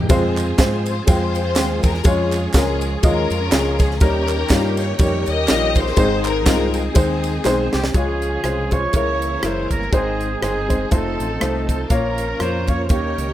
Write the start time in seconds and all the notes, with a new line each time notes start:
Already playing: G4
0.09 F2 F3 G#3 C4 F4 G#4 C5, kick, ride, tambourine
0.37 clap, ride, tambourine
0.58 G#2 G#3 C4 F4 C5, kick, snare, clap, ride, tambourine
0.86 C5, ride, tambourine
1.07 F2 G#3 C4 F4 G#4 C5 G5, kick, ride, tambourine
1.35 ride, tambourine
1.56 D#2 G#3 C4 F4 G5, snare, clap, ride, tambourine
1.83 E2 A#4, kick, snare, ride, tambourine
1.94 snare
2.04 F2 F3 G#3 C#4 F4 G4 G#4 C#5, kick, ride, tambourine
2.11 G#4
2.32 clap, ride, tambourine
2.54 C#2 G#3 C#4 F4 G#4 A#4, kick, snare, clap, ride, tambourine
2.81 ride, tambourine
3.03 D#2 G#3 C#4 F4 A#4 D#5, kick, ride, tambourine
3.30 F2, ride, tambourine
3.52 C#2 G#3 C#4 F4 G#4, snare, clap, ride, tambourine
3.79 G#4, kick, snare, ride, tambourine
3.91 snare
4.00 D#2 D#3 G3 A#3 C#4 D#4 F4 G4 A#4, kick, ride, tambourine
4.08 G4
4.28 clap, ride, tambourine
4.49 G2 G3 C#4 D#4 F4, kick, snare, clap, ride, tambourine
4.77 C#5, ride, tambourine
4.99 F2 G3 C#4 D#4 G4 A#4 C#5, kick, ride, tambourine
5.26 D#2 G4 A#4 D#5, ride, tambourine
5.47 A#1 G3 C#4 D#4 F4, snare, clap, ride, tambourine
5.75 D#4 G#4 C5, kick, ride, tambourine
5.87 snare
5.96 G#1 G#2 D#3 G#3 A#3 C4 D#4 G#4 C5, kick, ride, tambourine
6.03 C4
6.24 D#4 A#4, clap, ride, tambourine
6.46 C2 G#3 C4 D#4 F4, kick, snare, clap, ride, tambourine
6.74 C4 D#4 G#4, ride, tambourine
6.95 D#2 G#3 C4 D#4 C5, kick, ride, tambourine
7.24 ride, tambourine
7.44 B1 G#3 C4 D#4 C5, snare, clap, tambourine
7.73 C2 G4, snare, tambourine
7.84 snare
7.93 C#2 C#3 D#3 F3 G#3 C#4 F4 G#4 C#5, kick, closed hi-hat
8.01 F3
8.22 closed hi-hat
8.44 C2 G#3 C#4 F4 C5, cross-stick, closed hi-hat
8.71 G#3 C#4 F4 C5 C#5, kick, closed hi-hat
8.93 C#2 C#3 E3 G#3 A#3 C#4 E4 G4 A#4 C#5, kick, closed hi-hat
8.99 G#4
9.22 closed hi-hat
9.42 F#1 G#3 C#4 E4 A#4 C5, cross-stick, closed hi-hat
9.70 G1 A#4, kick, cross-stick, closed hi-hat
9.82 cross-stick
9.92 G#1 G#2 D#3 G#3 C4 D#4 G#4 C5, kick, closed hi-hat
10.21 closed hi-hat
10.41 G1 G#3 C4 D#4 G#4 C5, cross-stick, closed hi-hat
10.68 G#3 C4 D#4 C5, kick, closed hi-hat
10.91 F1 F3 A3 C4 D#4 F4 G#4 A4 C5, kick, closed hi-hat
10.98 A4
11.20 A1, closed hi-hat
11.40 C2 A3 D#4 F4 C5, cross-stick, closed hi-hat
11.67 A4, kick, closed hi-hat
11.85 A4 A#4
11.90 A#1 A#2 F3 A#3 C#4 F4 A#4 C#5, kick, closed hi-hat
12.18 closed hi-hat
12.39 F2 A#3 C#4 F4 C5 C#5, cross-stick, closed hi-hat
12.67 A#3 C#4 F4 C#5, kick, closed hi-hat
12.84 C5
12.89 D#2 D#3 G3 A#3 C#4 D#4 G4 A#4 C#5, kick, closed hi-hat
13.18 C#2, closed hi-hat